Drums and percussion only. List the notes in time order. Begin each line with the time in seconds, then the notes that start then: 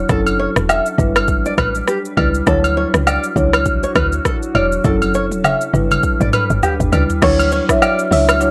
0.09 kick, cross-stick, shaker
0.27 high agogo, shaker
0.56 cross-stick, shaker
0.69 high agogo, low woodblock, shaker
0.86 shaker
0.98 kick, shaker
1.16 cross-stick, high agogo, shaker
1.28 kick, shaker
1.46 shaker
1.58 kick, cross-stick, high agogo, shaker
1.75 shaker
1.88 cross-stick, shaker
2.05 shaker
2.17 kick, high agogo
2.35 shaker
2.47 kick, cross-stick, shaker
2.64 high agogo, shaker
2.94 cross-stick, shaker
3.07 high agogo, low woodblock, shaker
3.24 shaker
3.36 kick, shaker
3.53 cross-stick, high agogo, shaker
3.66 kick, shaker
3.83 shaker
3.95 kick, cross-stick, high agogo, shaker
4.12 shaker
4.25 kick, cross-stick, shaker
4.43 shaker
4.55 high agogo
4.72 shaker
4.84 kick, high tom, shaker
5.02 high tom, high agogo, shaker
5.14 shaker
5.31 high tom, shaker
5.44 mid tom, high agogo, low woodblock, shaker
5.61 shaker
5.74 mid tom, shaker
5.91 mid tom, high agogo, shaker
6.03 kick, shaker
6.21 mid tom, shaker
6.33 mid tom, high agogo, shaker
6.50 shaker
6.63 floor tom, low woodblock, shaker
6.80 floor tom, shaker
6.93 floor tom, high agogo, shaker
7.10 floor tom, shaker
7.22 kick, cross-stick, crash, shaker
7.39 high agogo, shaker
7.52 shaker
7.69 kick, cross-stick, shaker
7.82 high agogo, low woodblock, shaker
7.99 shaker
8.12 open hi-hat, shaker
8.29 cross-stick, high agogo, shaker
8.41 shaker